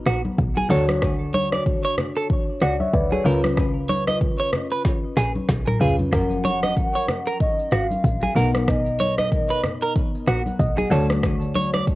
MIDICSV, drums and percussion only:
0, 0, Header, 1, 2, 480
1, 0, Start_track
1, 0, Key_signature, 6, "major"
1, 0, Tempo, 638298
1, 766, Time_signature, 4, 2, 24, 8
1, 8987, End_track
2, 0, Start_track
2, 0, Title_t, "Drums"
2, 47, Note_on_c, 9, 37, 92
2, 122, Note_off_c, 9, 37, 0
2, 186, Note_on_c, 9, 63, 72
2, 261, Note_off_c, 9, 63, 0
2, 287, Note_on_c, 9, 36, 90
2, 362, Note_off_c, 9, 36, 0
2, 425, Note_on_c, 9, 63, 80
2, 501, Note_off_c, 9, 63, 0
2, 526, Note_on_c, 9, 64, 79
2, 602, Note_off_c, 9, 64, 0
2, 665, Note_on_c, 9, 63, 71
2, 667, Note_on_c, 9, 37, 94
2, 740, Note_off_c, 9, 63, 0
2, 742, Note_off_c, 9, 37, 0
2, 766, Note_on_c, 9, 37, 99
2, 767, Note_on_c, 9, 36, 112
2, 767, Note_on_c, 9, 64, 67
2, 842, Note_off_c, 9, 36, 0
2, 842, Note_off_c, 9, 37, 0
2, 842, Note_off_c, 9, 64, 0
2, 1007, Note_on_c, 9, 63, 81
2, 1082, Note_off_c, 9, 63, 0
2, 1144, Note_on_c, 9, 37, 88
2, 1148, Note_on_c, 9, 63, 74
2, 1219, Note_off_c, 9, 37, 0
2, 1223, Note_off_c, 9, 63, 0
2, 1248, Note_on_c, 9, 36, 89
2, 1323, Note_off_c, 9, 36, 0
2, 1485, Note_on_c, 9, 64, 72
2, 1486, Note_on_c, 9, 37, 94
2, 1560, Note_off_c, 9, 64, 0
2, 1562, Note_off_c, 9, 37, 0
2, 1728, Note_on_c, 9, 36, 120
2, 1803, Note_off_c, 9, 36, 0
2, 1967, Note_on_c, 9, 37, 90
2, 2042, Note_off_c, 9, 37, 0
2, 2106, Note_on_c, 9, 63, 73
2, 2181, Note_off_c, 9, 63, 0
2, 2207, Note_on_c, 9, 36, 84
2, 2282, Note_off_c, 9, 36, 0
2, 2345, Note_on_c, 9, 63, 79
2, 2421, Note_off_c, 9, 63, 0
2, 2447, Note_on_c, 9, 64, 77
2, 2522, Note_off_c, 9, 64, 0
2, 2585, Note_on_c, 9, 63, 70
2, 2586, Note_on_c, 9, 37, 93
2, 2661, Note_off_c, 9, 63, 0
2, 2662, Note_off_c, 9, 37, 0
2, 2687, Note_on_c, 9, 36, 118
2, 2687, Note_on_c, 9, 37, 94
2, 2688, Note_on_c, 9, 64, 67
2, 2762, Note_off_c, 9, 36, 0
2, 2762, Note_off_c, 9, 37, 0
2, 2763, Note_off_c, 9, 64, 0
2, 2929, Note_on_c, 9, 63, 78
2, 3004, Note_off_c, 9, 63, 0
2, 3065, Note_on_c, 9, 37, 83
2, 3069, Note_on_c, 9, 63, 70
2, 3140, Note_off_c, 9, 37, 0
2, 3144, Note_off_c, 9, 63, 0
2, 3168, Note_on_c, 9, 36, 92
2, 3243, Note_off_c, 9, 36, 0
2, 3406, Note_on_c, 9, 37, 94
2, 3406, Note_on_c, 9, 64, 69
2, 3481, Note_off_c, 9, 64, 0
2, 3482, Note_off_c, 9, 37, 0
2, 3647, Note_on_c, 9, 38, 56
2, 3648, Note_on_c, 9, 36, 119
2, 3722, Note_off_c, 9, 38, 0
2, 3723, Note_off_c, 9, 36, 0
2, 3887, Note_on_c, 9, 38, 71
2, 3962, Note_off_c, 9, 38, 0
2, 4026, Note_on_c, 9, 63, 72
2, 4101, Note_off_c, 9, 63, 0
2, 4126, Note_on_c, 9, 38, 79
2, 4127, Note_on_c, 9, 36, 85
2, 4202, Note_off_c, 9, 36, 0
2, 4202, Note_off_c, 9, 38, 0
2, 4266, Note_on_c, 9, 45, 78
2, 4266, Note_on_c, 9, 63, 82
2, 4341, Note_off_c, 9, 45, 0
2, 4341, Note_off_c, 9, 63, 0
2, 4366, Note_on_c, 9, 43, 98
2, 4367, Note_on_c, 9, 64, 77
2, 4442, Note_off_c, 9, 43, 0
2, 4442, Note_off_c, 9, 64, 0
2, 4505, Note_on_c, 9, 63, 66
2, 4506, Note_on_c, 9, 43, 90
2, 4580, Note_off_c, 9, 63, 0
2, 4581, Note_off_c, 9, 43, 0
2, 4606, Note_on_c, 9, 82, 59
2, 4607, Note_on_c, 9, 36, 113
2, 4607, Note_on_c, 9, 37, 97
2, 4608, Note_on_c, 9, 64, 69
2, 4681, Note_off_c, 9, 82, 0
2, 4682, Note_off_c, 9, 36, 0
2, 4682, Note_off_c, 9, 37, 0
2, 4683, Note_off_c, 9, 64, 0
2, 4744, Note_on_c, 9, 82, 60
2, 4819, Note_off_c, 9, 82, 0
2, 4846, Note_on_c, 9, 82, 56
2, 4848, Note_on_c, 9, 63, 80
2, 4921, Note_off_c, 9, 82, 0
2, 4923, Note_off_c, 9, 63, 0
2, 4985, Note_on_c, 9, 37, 90
2, 4988, Note_on_c, 9, 82, 44
2, 4989, Note_on_c, 9, 63, 73
2, 5060, Note_off_c, 9, 37, 0
2, 5063, Note_off_c, 9, 82, 0
2, 5064, Note_off_c, 9, 63, 0
2, 5083, Note_on_c, 9, 82, 64
2, 5088, Note_on_c, 9, 36, 90
2, 5158, Note_off_c, 9, 82, 0
2, 5163, Note_off_c, 9, 36, 0
2, 5233, Note_on_c, 9, 82, 50
2, 5308, Note_off_c, 9, 82, 0
2, 5325, Note_on_c, 9, 64, 73
2, 5327, Note_on_c, 9, 37, 98
2, 5401, Note_off_c, 9, 64, 0
2, 5402, Note_off_c, 9, 37, 0
2, 5460, Note_on_c, 9, 82, 51
2, 5535, Note_off_c, 9, 82, 0
2, 5566, Note_on_c, 9, 82, 69
2, 5568, Note_on_c, 9, 36, 111
2, 5641, Note_off_c, 9, 82, 0
2, 5643, Note_off_c, 9, 36, 0
2, 5711, Note_on_c, 9, 82, 50
2, 5786, Note_off_c, 9, 82, 0
2, 5807, Note_on_c, 9, 37, 89
2, 5882, Note_off_c, 9, 37, 0
2, 5946, Note_on_c, 9, 63, 69
2, 5951, Note_on_c, 9, 82, 60
2, 6021, Note_off_c, 9, 63, 0
2, 6027, Note_off_c, 9, 82, 0
2, 6047, Note_on_c, 9, 36, 87
2, 6052, Note_on_c, 9, 82, 78
2, 6122, Note_off_c, 9, 36, 0
2, 6128, Note_off_c, 9, 82, 0
2, 6186, Note_on_c, 9, 63, 76
2, 6186, Note_on_c, 9, 82, 60
2, 6261, Note_off_c, 9, 63, 0
2, 6262, Note_off_c, 9, 82, 0
2, 6287, Note_on_c, 9, 64, 79
2, 6295, Note_on_c, 9, 82, 51
2, 6362, Note_off_c, 9, 64, 0
2, 6371, Note_off_c, 9, 82, 0
2, 6422, Note_on_c, 9, 82, 51
2, 6425, Note_on_c, 9, 63, 66
2, 6427, Note_on_c, 9, 37, 91
2, 6497, Note_off_c, 9, 82, 0
2, 6501, Note_off_c, 9, 63, 0
2, 6502, Note_off_c, 9, 37, 0
2, 6526, Note_on_c, 9, 37, 98
2, 6526, Note_on_c, 9, 82, 61
2, 6527, Note_on_c, 9, 36, 116
2, 6529, Note_on_c, 9, 64, 70
2, 6601, Note_off_c, 9, 82, 0
2, 6602, Note_off_c, 9, 36, 0
2, 6602, Note_off_c, 9, 37, 0
2, 6604, Note_off_c, 9, 64, 0
2, 6663, Note_on_c, 9, 82, 61
2, 6739, Note_off_c, 9, 82, 0
2, 6766, Note_on_c, 9, 82, 56
2, 6768, Note_on_c, 9, 63, 80
2, 6841, Note_off_c, 9, 82, 0
2, 6844, Note_off_c, 9, 63, 0
2, 6905, Note_on_c, 9, 37, 84
2, 6908, Note_on_c, 9, 82, 45
2, 6909, Note_on_c, 9, 63, 72
2, 6980, Note_off_c, 9, 37, 0
2, 6983, Note_off_c, 9, 82, 0
2, 6984, Note_off_c, 9, 63, 0
2, 7002, Note_on_c, 9, 82, 66
2, 7008, Note_on_c, 9, 36, 89
2, 7078, Note_off_c, 9, 82, 0
2, 7083, Note_off_c, 9, 36, 0
2, 7152, Note_on_c, 9, 82, 50
2, 7227, Note_off_c, 9, 82, 0
2, 7246, Note_on_c, 9, 37, 94
2, 7246, Note_on_c, 9, 64, 73
2, 7321, Note_off_c, 9, 37, 0
2, 7321, Note_off_c, 9, 64, 0
2, 7380, Note_on_c, 9, 82, 49
2, 7455, Note_off_c, 9, 82, 0
2, 7486, Note_on_c, 9, 82, 70
2, 7488, Note_on_c, 9, 36, 115
2, 7562, Note_off_c, 9, 82, 0
2, 7563, Note_off_c, 9, 36, 0
2, 7631, Note_on_c, 9, 82, 53
2, 7706, Note_off_c, 9, 82, 0
2, 7727, Note_on_c, 9, 37, 88
2, 7802, Note_off_c, 9, 37, 0
2, 7866, Note_on_c, 9, 63, 70
2, 7872, Note_on_c, 9, 82, 60
2, 7941, Note_off_c, 9, 63, 0
2, 7947, Note_off_c, 9, 82, 0
2, 7967, Note_on_c, 9, 36, 85
2, 7972, Note_on_c, 9, 82, 74
2, 8042, Note_off_c, 9, 36, 0
2, 8048, Note_off_c, 9, 82, 0
2, 8106, Note_on_c, 9, 63, 80
2, 8106, Note_on_c, 9, 82, 60
2, 8181, Note_off_c, 9, 63, 0
2, 8182, Note_off_c, 9, 82, 0
2, 8207, Note_on_c, 9, 64, 77
2, 8215, Note_on_c, 9, 82, 51
2, 8282, Note_off_c, 9, 64, 0
2, 8291, Note_off_c, 9, 82, 0
2, 8342, Note_on_c, 9, 82, 51
2, 8346, Note_on_c, 9, 37, 92
2, 8346, Note_on_c, 9, 63, 70
2, 8417, Note_off_c, 9, 82, 0
2, 8421, Note_off_c, 9, 63, 0
2, 8422, Note_off_c, 9, 37, 0
2, 8446, Note_on_c, 9, 37, 97
2, 8446, Note_on_c, 9, 82, 61
2, 8447, Note_on_c, 9, 36, 114
2, 8448, Note_on_c, 9, 64, 70
2, 8521, Note_off_c, 9, 82, 0
2, 8522, Note_off_c, 9, 36, 0
2, 8522, Note_off_c, 9, 37, 0
2, 8523, Note_off_c, 9, 64, 0
2, 8583, Note_on_c, 9, 82, 60
2, 8658, Note_off_c, 9, 82, 0
2, 8686, Note_on_c, 9, 82, 57
2, 8688, Note_on_c, 9, 63, 83
2, 8761, Note_off_c, 9, 82, 0
2, 8763, Note_off_c, 9, 63, 0
2, 8825, Note_on_c, 9, 37, 84
2, 8828, Note_on_c, 9, 63, 72
2, 8828, Note_on_c, 9, 82, 46
2, 8900, Note_off_c, 9, 37, 0
2, 8903, Note_off_c, 9, 82, 0
2, 8904, Note_off_c, 9, 63, 0
2, 8922, Note_on_c, 9, 82, 65
2, 8927, Note_on_c, 9, 36, 91
2, 8987, Note_off_c, 9, 36, 0
2, 8987, Note_off_c, 9, 82, 0
2, 8987, End_track
0, 0, End_of_file